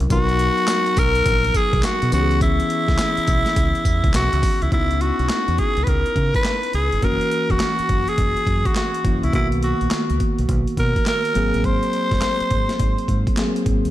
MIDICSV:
0, 0, Header, 1, 6, 480
1, 0, Start_track
1, 0, Tempo, 576923
1, 86, Time_signature, 4, 2, 24, 8
1, 11569, End_track
2, 0, Start_track
2, 0, Title_t, "Tenor saxophone"
2, 0, Program_c, 0, 66
2, 101, Note_on_c, 0, 66, 117
2, 820, Note_on_c, 0, 70, 124
2, 833, Note_off_c, 0, 66, 0
2, 1299, Note_on_c, 0, 68, 103
2, 1311, Note_off_c, 0, 70, 0
2, 1540, Note_on_c, 0, 66, 102
2, 1553, Note_off_c, 0, 68, 0
2, 1773, Note_off_c, 0, 66, 0
2, 1781, Note_on_c, 0, 66, 103
2, 1997, Note_off_c, 0, 66, 0
2, 2018, Note_on_c, 0, 64, 105
2, 3418, Note_off_c, 0, 64, 0
2, 3455, Note_on_c, 0, 66, 93
2, 3850, Note_on_c, 0, 64, 78
2, 3862, Note_off_c, 0, 66, 0
2, 3931, Note_off_c, 0, 64, 0
2, 3936, Note_on_c, 0, 64, 96
2, 4174, Note_on_c, 0, 66, 90
2, 4187, Note_off_c, 0, 64, 0
2, 4655, Note_on_c, 0, 68, 96
2, 4667, Note_off_c, 0, 66, 0
2, 4853, Note_on_c, 0, 71, 73
2, 4866, Note_off_c, 0, 68, 0
2, 4898, Note_on_c, 0, 70, 100
2, 4910, Note_off_c, 0, 71, 0
2, 5282, Note_off_c, 0, 70, 0
2, 5287, Note_on_c, 0, 71, 98
2, 5587, Note_off_c, 0, 71, 0
2, 5615, Note_on_c, 0, 68, 99
2, 5854, Note_on_c, 0, 70, 108
2, 5866, Note_off_c, 0, 68, 0
2, 6249, Note_on_c, 0, 66, 94
2, 6261, Note_off_c, 0, 70, 0
2, 6732, Note_on_c, 0, 68, 102
2, 6745, Note_off_c, 0, 66, 0
2, 7211, Note_on_c, 0, 66, 83
2, 7223, Note_off_c, 0, 68, 0
2, 7289, Note_off_c, 0, 66, 0
2, 7294, Note_on_c, 0, 66, 82
2, 7651, Note_off_c, 0, 66, 0
2, 7651, Note_on_c, 0, 66, 64
2, 7689, Note_on_c, 0, 64, 82
2, 7702, Note_off_c, 0, 66, 0
2, 7770, Note_off_c, 0, 64, 0
2, 7780, Note_on_c, 0, 64, 90
2, 7884, Note_off_c, 0, 64, 0
2, 8019, Note_on_c, 0, 66, 77
2, 8459, Note_off_c, 0, 66, 0
2, 8979, Note_on_c, 0, 70, 82
2, 9196, Note_off_c, 0, 70, 0
2, 9220, Note_on_c, 0, 70, 94
2, 9696, Note_on_c, 0, 72, 109
2, 9708, Note_off_c, 0, 70, 0
2, 11131, Note_off_c, 0, 72, 0
2, 11569, End_track
3, 0, Start_track
3, 0, Title_t, "Tine electric piano"
3, 0, Program_c, 1, 4
3, 0, Control_c, 1, 64, 127
3, 80, Note_on_c, 1, 54, 62
3, 87, Note_on_c, 1, 59, 63
3, 94, Note_on_c, 1, 63, 64
3, 96, Control_c, 1, 64, 0
3, 101, Note_on_c, 1, 70, 73
3, 247, Control_c, 1, 64, 127
3, 1730, Note_off_c, 1, 54, 0
3, 1733, Note_off_c, 1, 59, 0
3, 1736, Note_off_c, 1, 63, 0
3, 1740, Note_off_c, 1, 70, 0
3, 1760, Note_on_c, 1, 52, 75
3, 1767, Note_on_c, 1, 59, 67
3, 1774, Note_on_c, 1, 61, 70
3, 1775, Control_c, 1, 64, 0
3, 1780, Note_on_c, 1, 67, 62
3, 1835, Note_on_c, 1, 68, 73
3, 1842, Note_off_c, 1, 67, 0
3, 1918, Control_c, 1, 64, 127
3, 3649, Note_off_c, 1, 52, 0
3, 3653, Note_off_c, 1, 59, 0
3, 3656, Note_off_c, 1, 61, 0
3, 3687, Note_off_c, 1, 68, 0
3, 3919, Note_on_c, 1, 63, 58
3, 3927, Note_on_c, 1, 59, 55
3, 3934, Note_on_c, 1, 61, 52
3, 3936, Control_c, 1, 64, 0
3, 3940, Note_on_c, 1, 64, 68
3, 4064, Control_c, 1, 64, 127
3, 5809, Note_off_c, 1, 63, 0
3, 5813, Note_off_c, 1, 59, 0
3, 5816, Note_off_c, 1, 61, 0
3, 5820, Note_off_c, 1, 64, 0
3, 5838, Note_on_c, 1, 52, 63
3, 5845, Note_on_c, 1, 58, 59
3, 5851, Note_on_c, 1, 61, 55
3, 5858, Control_c, 1, 64, 0
3, 5858, Note_on_c, 1, 66, 67
3, 6010, Control_c, 1, 64, 127
3, 7489, Note_off_c, 1, 52, 0
3, 7492, Note_off_c, 1, 58, 0
3, 7495, Note_off_c, 1, 61, 0
3, 7498, Note_off_c, 1, 66, 0
3, 7523, Note_on_c, 1, 52, 46
3, 7527, Note_on_c, 1, 58, 44
3, 7530, Note_on_c, 1, 61, 46
3, 7534, Note_on_c, 1, 64, 56
3, 7758, Note_off_c, 1, 58, 0
3, 7761, Note_on_c, 1, 51, 61
3, 7764, Note_off_c, 1, 52, 0
3, 7768, Note_off_c, 1, 61, 0
3, 7768, Note_on_c, 1, 58, 57
3, 7770, Note_off_c, 1, 64, 0
3, 7774, Note_on_c, 1, 59, 54
3, 7776, Control_c, 1, 64, 0
3, 7781, Note_on_c, 1, 66, 72
3, 7933, Control_c, 1, 64, 127
3, 9410, Note_off_c, 1, 51, 0
3, 9413, Note_off_c, 1, 58, 0
3, 9417, Note_off_c, 1, 59, 0
3, 9420, Note_off_c, 1, 66, 0
3, 9438, Note_on_c, 1, 54, 70
3, 9445, Note_on_c, 1, 58, 61
3, 9452, Note_on_c, 1, 60, 63
3, 9455, Control_c, 1, 64, 0
3, 9458, Note_on_c, 1, 68, 72
3, 9601, Control_c, 1, 64, 127
3, 11089, Note_off_c, 1, 54, 0
3, 11092, Note_off_c, 1, 58, 0
3, 11096, Note_off_c, 1, 60, 0
3, 11099, Note_off_c, 1, 68, 0
3, 11126, Note_on_c, 1, 54, 55
3, 11130, Note_on_c, 1, 58, 51
3, 11132, Note_on_c, 1, 60, 50
3, 11137, Note_on_c, 1, 68, 59
3, 11569, Note_off_c, 1, 54, 0
3, 11569, Note_off_c, 1, 58, 0
3, 11569, Note_off_c, 1, 60, 0
3, 11569, Note_off_c, 1, 68, 0
3, 11569, End_track
4, 0, Start_track
4, 0, Title_t, "Fingered electric bass"
4, 0, Program_c, 2, 33
4, 2, Note_on_c, 2, 36, 91
4, 71, Note_off_c, 2, 36, 0
4, 89, Note_on_c, 2, 35, 107
4, 407, Note_off_c, 2, 35, 0
4, 810, Note_on_c, 2, 35, 99
4, 1003, Note_off_c, 2, 35, 0
4, 1048, Note_on_c, 2, 34, 106
4, 1242, Note_off_c, 2, 34, 0
4, 1443, Note_on_c, 2, 35, 105
4, 1511, Note_off_c, 2, 35, 0
4, 1685, Note_on_c, 2, 47, 96
4, 1753, Note_off_c, 2, 47, 0
4, 1771, Note_on_c, 2, 37, 108
4, 2158, Note_off_c, 2, 37, 0
4, 2402, Note_on_c, 2, 37, 95
4, 2471, Note_off_c, 2, 37, 0
4, 2730, Note_on_c, 2, 35, 99
4, 2853, Note_off_c, 2, 35, 0
4, 2968, Note_on_c, 2, 37, 106
4, 3092, Note_off_c, 2, 37, 0
4, 3207, Note_on_c, 2, 40, 93
4, 3331, Note_off_c, 2, 40, 0
4, 3362, Note_on_c, 2, 37, 104
4, 3431, Note_off_c, 2, 37, 0
4, 3449, Note_on_c, 2, 35, 102
4, 3573, Note_off_c, 2, 35, 0
4, 3604, Note_on_c, 2, 37, 85
4, 3672, Note_off_c, 2, 37, 0
4, 3845, Note_on_c, 2, 37, 80
4, 3913, Note_off_c, 2, 37, 0
4, 3929, Note_on_c, 2, 37, 86
4, 4247, Note_off_c, 2, 37, 0
4, 4322, Note_on_c, 2, 35, 93
4, 4391, Note_off_c, 2, 35, 0
4, 4561, Note_on_c, 2, 40, 92
4, 4630, Note_off_c, 2, 40, 0
4, 4802, Note_on_c, 2, 37, 88
4, 4871, Note_off_c, 2, 37, 0
4, 4888, Note_on_c, 2, 37, 96
4, 5012, Note_off_c, 2, 37, 0
4, 5125, Note_on_c, 2, 49, 96
4, 5250, Note_off_c, 2, 49, 0
4, 5609, Note_on_c, 2, 37, 83
4, 5732, Note_off_c, 2, 37, 0
4, 5763, Note_on_c, 2, 31, 88
4, 5831, Note_off_c, 2, 31, 0
4, 5848, Note_on_c, 2, 30, 94
4, 5972, Note_off_c, 2, 30, 0
4, 6240, Note_on_c, 2, 28, 83
4, 6310, Note_off_c, 2, 28, 0
4, 6570, Note_on_c, 2, 30, 96
4, 6693, Note_off_c, 2, 30, 0
4, 6808, Note_on_c, 2, 30, 104
4, 6932, Note_off_c, 2, 30, 0
4, 7046, Note_on_c, 2, 42, 97
4, 7171, Note_off_c, 2, 42, 0
4, 7528, Note_on_c, 2, 30, 93
4, 7652, Note_off_c, 2, 30, 0
4, 7684, Note_on_c, 2, 36, 91
4, 7752, Note_off_c, 2, 36, 0
4, 7769, Note_on_c, 2, 35, 94
4, 8087, Note_off_c, 2, 35, 0
4, 8165, Note_on_c, 2, 34, 84
4, 8233, Note_off_c, 2, 34, 0
4, 8404, Note_on_c, 2, 37, 80
4, 8472, Note_off_c, 2, 37, 0
4, 8644, Note_on_c, 2, 35, 87
4, 8712, Note_off_c, 2, 35, 0
4, 8729, Note_on_c, 2, 35, 95
4, 8852, Note_off_c, 2, 35, 0
4, 8966, Note_on_c, 2, 47, 104
4, 9091, Note_off_c, 2, 47, 0
4, 9451, Note_on_c, 2, 32, 91
4, 9574, Note_off_c, 2, 32, 0
4, 9603, Note_on_c, 2, 33, 87
4, 9672, Note_off_c, 2, 33, 0
4, 9688, Note_on_c, 2, 32, 89
4, 9812, Note_off_c, 2, 32, 0
4, 10082, Note_on_c, 2, 30, 89
4, 10151, Note_off_c, 2, 30, 0
4, 10411, Note_on_c, 2, 32, 88
4, 10534, Note_off_c, 2, 32, 0
4, 10649, Note_on_c, 2, 32, 110
4, 10773, Note_off_c, 2, 32, 0
4, 10887, Note_on_c, 2, 44, 90
4, 11011, Note_off_c, 2, 44, 0
4, 11369, Note_on_c, 2, 32, 90
4, 11492, Note_off_c, 2, 32, 0
4, 11522, Note_on_c, 2, 38, 74
4, 11569, Note_off_c, 2, 38, 0
4, 11569, End_track
5, 0, Start_track
5, 0, Title_t, "Muted fingered electric bass strokes"
5, 2644, Note_on_c, 9, 29, 49
5, 2727, Note_off_c, 9, 29, 0
5, 6484, Note_on_c, 9, 29, 45
5, 6567, Note_off_c, 9, 29, 0
5, 8251, Note_on_c, 9, 29, 44
5, 8334, Note_off_c, 9, 29, 0
5, 10324, Note_on_c, 9, 29, 43
5, 10407, Note_off_c, 9, 29, 0
5, 11569, End_track
6, 0, Start_track
6, 0, Title_t, "Drums"
6, 2, Note_on_c, 9, 42, 48
6, 85, Note_off_c, 9, 42, 0
6, 85, Note_on_c, 9, 42, 73
6, 85, Note_on_c, 9, 54, 66
6, 86, Note_on_c, 9, 36, 107
6, 168, Note_off_c, 9, 42, 0
6, 168, Note_off_c, 9, 54, 0
6, 170, Note_off_c, 9, 36, 0
6, 240, Note_on_c, 9, 42, 54
6, 323, Note_off_c, 9, 42, 0
6, 326, Note_on_c, 9, 42, 79
6, 409, Note_off_c, 9, 42, 0
6, 480, Note_on_c, 9, 42, 43
6, 560, Note_on_c, 9, 39, 103
6, 564, Note_off_c, 9, 42, 0
6, 564, Note_on_c, 9, 38, 127
6, 564, Note_on_c, 9, 42, 88
6, 565, Note_on_c, 9, 54, 112
6, 643, Note_off_c, 9, 39, 0
6, 647, Note_off_c, 9, 38, 0
6, 648, Note_off_c, 9, 42, 0
6, 648, Note_off_c, 9, 54, 0
6, 719, Note_on_c, 9, 42, 56
6, 802, Note_off_c, 9, 42, 0
6, 804, Note_on_c, 9, 42, 77
6, 805, Note_on_c, 9, 54, 73
6, 808, Note_on_c, 9, 36, 96
6, 888, Note_off_c, 9, 42, 0
6, 888, Note_off_c, 9, 54, 0
6, 891, Note_off_c, 9, 36, 0
6, 959, Note_on_c, 9, 42, 63
6, 1042, Note_off_c, 9, 42, 0
6, 1045, Note_on_c, 9, 42, 92
6, 1046, Note_on_c, 9, 36, 99
6, 1046, Note_on_c, 9, 54, 66
6, 1128, Note_off_c, 9, 42, 0
6, 1129, Note_off_c, 9, 36, 0
6, 1129, Note_off_c, 9, 54, 0
6, 1202, Note_on_c, 9, 42, 54
6, 1284, Note_on_c, 9, 36, 80
6, 1285, Note_off_c, 9, 42, 0
6, 1285, Note_on_c, 9, 42, 67
6, 1286, Note_on_c, 9, 54, 73
6, 1367, Note_off_c, 9, 36, 0
6, 1368, Note_off_c, 9, 42, 0
6, 1369, Note_off_c, 9, 54, 0
6, 1440, Note_on_c, 9, 36, 97
6, 1440, Note_on_c, 9, 42, 56
6, 1521, Note_on_c, 9, 39, 114
6, 1523, Note_off_c, 9, 36, 0
6, 1523, Note_off_c, 9, 42, 0
6, 1525, Note_on_c, 9, 38, 122
6, 1525, Note_on_c, 9, 54, 94
6, 1527, Note_on_c, 9, 42, 73
6, 1604, Note_off_c, 9, 39, 0
6, 1608, Note_off_c, 9, 38, 0
6, 1608, Note_off_c, 9, 54, 0
6, 1610, Note_off_c, 9, 42, 0
6, 1681, Note_on_c, 9, 42, 70
6, 1764, Note_off_c, 9, 42, 0
6, 1764, Note_on_c, 9, 54, 73
6, 1765, Note_on_c, 9, 42, 83
6, 1847, Note_off_c, 9, 54, 0
6, 1848, Note_off_c, 9, 42, 0
6, 1922, Note_on_c, 9, 42, 50
6, 2005, Note_off_c, 9, 42, 0
6, 2006, Note_on_c, 9, 36, 112
6, 2006, Note_on_c, 9, 42, 69
6, 2006, Note_on_c, 9, 54, 71
6, 2089, Note_off_c, 9, 36, 0
6, 2089, Note_off_c, 9, 42, 0
6, 2089, Note_off_c, 9, 54, 0
6, 2161, Note_on_c, 9, 42, 61
6, 2244, Note_off_c, 9, 42, 0
6, 2246, Note_on_c, 9, 42, 81
6, 2330, Note_off_c, 9, 42, 0
6, 2399, Note_on_c, 9, 36, 91
6, 2399, Note_on_c, 9, 38, 59
6, 2401, Note_on_c, 9, 42, 45
6, 2481, Note_on_c, 9, 39, 106
6, 2483, Note_off_c, 9, 36, 0
6, 2483, Note_off_c, 9, 38, 0
6, 2484, Note_off_c, 9, 42, 0
6, 2484, Note_on_c, 9, 38, 127
6, 2485, Note_on_c, 9, 42, 95
6, 2486, Note_on_c, 9, 54, 102
6, 2564, Note_off_c, 9, 39, 0
6, 2568, Note_off_c, 9, 38, 0
6, 2568, Note_off_c, 9, 42, 0
6, 2569, Note_off_c, 9, 54, 0
6, 2640, Note_on_c, 9, 42, 59
6, 2723, Note_off_c, 9, 42, 0
6, 2724, Note_on_c, 9, 42, 75
6, 2724, Note_on_c, 9, 54, 72
6, 2728, Note_on_c, 9, 36, 101
6, 2807, Note_off_c, 9, 42, 0
6, 2808, Note_off_c, 9, 54, 0
6, 2811, Note_off_c, 9, 36, 0
6, 2878, Note_on_c, 9, 38, 70
6, 2879, Note_on_c, 9, 42, 62
6, 2961, Note_off_c, 9, 38, 0
6, 2962, Note_off_c, 9, 42, 0
6, 2964, Note_on_c, 9, 42, 94
6, 2966, Note_on_c, 9, 36, 102
6, 2966, Note_on_c, 9, 54, 72
6, 3048, Note_off_c, 9, 42, 0
6, 3049, Note_off_c, 9, 36, 0
6, 3049, Note_off_c, 9, 54, 0
6, 3121, Note_on_c, 9, 42, 47
6, 3204, Note_off_c, 9, 42, 0
6, 3204, Note_on_c, 9, 36, 84
6, 3205, Note_on_c, 9, 42, 66
6, 3206, Note_on_c, 9, 54, 72
6, 3287, Note_off_c, 9, 36, 0
6, 3288, Note_off_c, 9, 42, 0
6, 3289, Note_off_c, 9, 54, 0
6, 3360, Note_on_c, 9, 36, 101
6, 3360, Note_on_c, 9, 42, 54
6, 3442, Note_on_c, 9, 39, 104
6, 3443, Note_off_c, 9, 36, 0
6, 3443, Note_off_c, 9, 42, 0
6, 3445, Note_on_c, 9, 38, 122
6, 3446, Note_on_c, 9, 54, 93
6, 3448, Note_on_c, 9, 42, 76
6, 3525, Note_off_c, 9, 39, 0
6, 3529, Note_off_c, 9, 38, 0
6, 3529, Note_off_c, 9, 54, 0
6, 3531, Note_off_c, 9, 42, 0
6, 3601, Note_on_c, 9, 42, 72
6, 3685, Note_off_c, 9, 42, 0
6, 3685, Note_on_c, 9, 54, 73
6, 3686, Note_on_c, 9, 36, 102
6, 3686, Note_on_c, 9, 46, 88
6, 3768, Note_off_c, 9, 54, 0
6, 3769, Note_off_c, 9, 36, 0
6, 3769, Note_off_c, 9, 46, 0
6, 3843, Note_on_c, 9, 42, 51
6, 3926, Note_off_c, 9, 42, 0
6, 3926, Note_on_c, 9, 36, 102
6, 3926, Note_on_c, 9, 42, 60
6, 4009, Note_off_c, 9, 36, 0
6, 4010, Note_off_c, 9, 42, 0
6, 4082, Note_on_c, 9, 42, 55
6, 4165, Note_off_c, 9, 42, 0
6, 4168, Note_on_c, 9, 42, 76
6, 4251, Note_off_c, 9, 42, 0
6, 4321, Note_on_c, 9, 42, 41
6, 4402, Note_on_c, 9, 39, 92
6, 4404, Note_off_c, 9, 42, 0
6, 4406, Note_on_c, 9, 38, 116
6, 4406, Note_on_c, 9, 42, 82
6, 4485, Note_off_c, 9, 39, 0
6, 4489, Note_off_c, 9, 38, 0
6, 4490, Note_off_c, 9, 42, 0
6, 4559, Note_on_c, 9, 42, 55
6, 4643, Note_off_c, 9, 42, 0
6, 4644, Note_on_c, 9, 42, 63
6, 4648, Note_on_c, 9, 36, 86
6, 4728, Note_off_c, 9, 42, 0
6, 4731, Note_off_c, 9, 36, 0
6, 4798, Note_on_c, 9, 42, 53
6, 4882, Note_off_c, 9, 42, 0
6, 4883, Note_on_c, 9, 42, 79
6, 4885, Note_on_c, 9, 36, 91
6, 4967, Note_off_c, 9, 42, 0
6, 4969, Note_off_c, 9, 36, 0
6, 5040, Note_on_c, 9, 42, 45
6, 5123, Note_off_c, 9, 42, 0
6, 5123, Note_on_c, 9, 36, 75
6, 5124, Note_on_c, 9, 42, 58
6, 5206, Note_off_c, 9, 36, 0
6, 5207, Note_off_c, 9, 42, 0
6, 5279, Note_on_c, 9, 36, 90
6, 5279, Note_on_c, 9, 42, 50
6, 5359, Note_on_c, 9, 39, 96
6, 5362, Note_off_c, 9, 36, 0
6, 5362, Note_off_c, 9, 42, 0
6, 5363, Note_on_c, 9, 38, 113
6, 5365, Note_on_c, 9, 42, 67
6, 5443, Note_off_c, 9, 39, 0
6, 5446, Note_off_c, 9, 38, 0
6, 5448, Note_off_c, 9, 42, 0
6, 5519, Note_on_c, 9, 42, 59
6, 5602, Note_off_c, 9, 42, 0
6, 5602, Note_on_c, 9, 42, 76
6, 5686, Note_off_c, 9, 42, 0
6, 5761, Note_on_c, 9, 42, 50
6, 5844, Note_off_c, 9, 42, 0
6, 5844, Note_on_c, 9, 42, 65
6, 5845, Note_on_c, 9, 36, 89
6, 5927, Note_off_c, 9, 42, 0
6, 5928, Note_off_c, 9, 36, 0
6, 5999, Note_on_c, 9, 42, 51
6, 6082, Note_off_c, 9, 42, 0
6, 6085, Note_on_c, 9, 42, 69
6, 6169, Note_off_c, 9, 42, 0
6, 6238, Note_on_c, 9, 36, 76
6, 6239, Note_on_c, 9, 42, 38
6, 6320, Note_on_c, 9, 39, 90
6, 6322, Note_off_c, 9, 36, 0
6, 6322, Note_off_c, 9, 42, 0
6, 6323, Note_on_c, 9, 38, 121
6, 6324, Note_on_c, 9, 42, 84
6, 6403, Note_off_c, 9, 39, 0
6, 6406, Note_off_c, 9, 38, 0
6, 6407, Note_off_c, 9, 42, 0
6, 6479, Note_on_c, 9, 42, 52
6, 6562, Note_off_c, 9, 42, 0
6, 6565, Note_on_c, 9, 42, 68
6, 6568, Note_on_c, 9, 36, 89
6, 6648, Note_off_c, 9, 42, 0
6, 6651, Note_off_c, 9, 36, 0
6, 6719, Note_on_c, 9, 42, 54
6, 6802, Note_off_c, 9, 42, 0
6, 6805, Note_on_c, 9, 42, 86
6, 6806, Note_on_c, 9, 36, 94
6, 6888, Note_off_c, 9, 42, 0
6, 6889, Note_off_c, 9, 36, 0
6, 6961, Note_on_c, 9, 42, 43
6, 7044, Note_on_c, 9, 36, 82
6, 7045, Note_off_c, 9, 42, 0
6, 7047, Note_on_c, 9, 42, 64
6, 7127, Note_off_c, 9, 36, 0
6, 7131, Note_off_c, 9, 42, 0
6, 7200, Note_on_c, 9, 36, 92
6, 7201, Note_on_c, 9, 42, 53
6, 7283, Note_off_c, 9, 36, 0
6, 7283, Note_on_c, 9, 39, 98
6, 7284, Note_off_c, 9, 42, 0
6, 7286, Note_on_c, 9, 38, 109
6, 7289, Note_on_c, 9, 42, 67
6, 7366, Note_off_c, 9, 39, 0
6, 7369, Note_off_c, 9, 38, 0
6, 7372, Note_off_c, 9, 42, 0
6, 7441, Note_on_c, 9, 42, 65
6, 7525, Note_off_c, 9, 42, 0
6, 7526, Note_on_c, 9, 36, 93
6, 7526, Note_on_c, 9, 42, 80
6, 7609, Note_off_c, 9, 36, 0
6, 7609, Note_off_c, 9, 42, 0
6, 7683, Note_on_c, 9, 42, 49
6, 7765, Note_off_c, 9, 42, 0
6, 7765, Note_on_c, 9, 42, 63
6, 7766, Note_on_c, 9, 36, 99
6, 7848, Note_off_c, 9, 42, 0
6, 7849, Note_off_c, 9, 36, 0
6, 7921, Note_on_c, 9, 42, 53
6, 8004, Note_off_c, 9, 42, 0
6, 8008, Note_on_c, 9, 42, 74
6, 8092, Note_off_c, 9, 42, 0
6, 8162, Note_on_c, 9, 42, 40
6, 8242, Note_on_c, 9, 39, 93
6, 8245, Note_off_c, 9, 42, 0
6, 8246, Note_on_c, 9, 38, 115
6, 8246, Note_on_c, 9, 42, 77
6, 8325, Note_off_c, 9, 39, 0
6, 8329, Note_off_c, 9, 38, 0
6, 8330, Note_off_c, 9, 42, 0
6, 8400, Note_on_c, 9, 42, 52
6, 8483, Note_off_c, 9, 42, 0
6, 8487, Note_on_c, 9, 42, 69
6, 8488, Note_on_c, 9, 36, 82
6, 8570, Note_off_c, 9, 42, 0
6, 8572, Note_off_c, 9, 36, 0
6, 8640, Note_on_c, 9, 42, 54
6, 8723, Note_off_c, 9, 42, 0
6, 8726, Note_on_c, 9, 36, 90
6, 8726, Note_on_c, 9, 42, 86
6, 8809, Note_off_c, 9, 36, 0
6, 8809, Note_off_c, 9, 42, 0
6, 8881, Note_on_c, 9, 42, 47
6, 8964, Note_off_c, 9, 42, 0
6, 8964, Note_on_c, 9, 36, 79
6, 8964, Note_on_c, 9, 42, 63
6, 9047, Note_off_c, 9, 36, 0
6, 9048, Note_off_c, 9, 42, 0
6, 9120, Note_on_c, 9, 36, 84
6, 9120, Note_on_c, 9, 42, 50
6, 9201, Note_on_c, 9, 39, 97
6, 9203, Note_off_c, 9, 36, 0
6, 9203, Note_off_c, 9, 42, 0
6, 9204, Note_on_c, 9, 38, 119
6, 9207, Note_on_c, 9, 42, 69
6, 9284, Note_off_c, 9, 39, 0
6, 9288, Note_off_c, 9, 38, 0
6, 9290, Note_off_c, 9, 42, 0
6, 9361, Note_on_c, 9, 42, 62
6, 9444, Note_off_c, 9, 42, 0
6, 9445, Note_on_c, 9, 42, 76
6, 9528, Note_off_c, 9, 42, 0
6, 9602, Note_on_c, 9, 42, 49
6, 9685, Note_off_c, 9, 42, 0
6, 9686, Note_on_c, 9, 36, 102
6, 9686, Note_on_c, 9, 42, 62
6, 9769, Note_off_c, 9, 36, 0
6, 9769, Note_off_c, 9, 42, 0
6, 9840, Note_on_c, 9, 42, 53
6, 9924, Note_off_c, 9, 42, 0
6, 9926, Note_on_c, 9, 42, 69
6, 10010, Note_off_c, 9, 42, 0
6, 10079, Note_on_c, 9, 36, 91
6, 10079, Note_on_c, 9, 38, 58
6, 10080, Note_on_c, 9, 42, 39
6, 10161, Note_on_c, 9, 39, 100
6, 10162, Note_off_c, 9, 36, 0
6, 10162, Note_off_c, 9, 38, 0
6, 10163, Note_off_c, 9, 42, 0
6, 10164, Note_on_c, 9, 38, 118
6, 10165, Note_on_c, 9, 42, 80
6, 10244, Note_off_c, 9, 39, 0
6, 10248, Note_off_c, 9, 38, 0
6, 10248, Note_off_c, 9, 42, 0
6, 10319, Note_on_c, 9, 42, 55
6, 10403, Note_off_c, 9, 42, 0
6, 10404, Note_on_c, 9, 42, 70
6, 10408, Note_on_c, 9, 36, 85
6, 10488, Note_off_c, 9, 42, 0
6, 10491, Note_off_c, 9, 36, 0
6, 10559, Note_on_c, 9, 38, 63
6, 10560, Note_on_c, 9, 42, 55
6, 10642, Note_off_c, 9, 38, 0
6, 10643, Note_off_c, 9, 42, 0
6, 10646, Note_on_c, 9, 36, 93
6, 10646, Note_on_c, 9, 42, 89
6, 10729, Note_off_c, 9, 36, 0
6, 10729, Note_off_c, 9, 42, 0
6, 10803, Note_on_c, 9, 42, 49
6, 10885, Note_on_c, 9, 36, 78
6, 10886, Note_off_c, 9, 42, 0
6, 10888, Note_on_c, 9, 42, 62
6, 10968, Note_off_c, 9, 36, 0
6, 10971, Note_off_c, 9, 42, 0
6, 11040, Note_on_c, 9, 36, 92
6, 11042, Note_on_c, 9, 42, 51
6, 11123, Note_on_c, 9, 39, 104
6, 11124, Note_off_c, 9, 36, 0
6, 11125, Note_off_c, 9, 42, 0
6, 11127, Note_on_c, 9, 38, 117
6, 11129, Note_on_c, 9, 42, 70
6, 11206, Note_off_c, 9, 39, 0
6, 11210, Note_off_c, 9, 38, 0
6, 11212, Note_off_c, 9, 42, 0
6, 11283, Note_on_c, 9, 42, 61
6, 11365, Note_off_c, 9, 42, 0
6, 11365, Note_on_c, 9, 42, 81
6, 11366, Note_on_c, 9, 36, 96
6, 11448, Note_off_c, 9, 42, 0
6, 11449, Note_off_c, 9, 36, 0
6, 11524, Note_on_c, 9, 42, 49
6, 11569, Note_off_c, 9, 42, 0
6, 11569, End_track
0, 0, End_of_file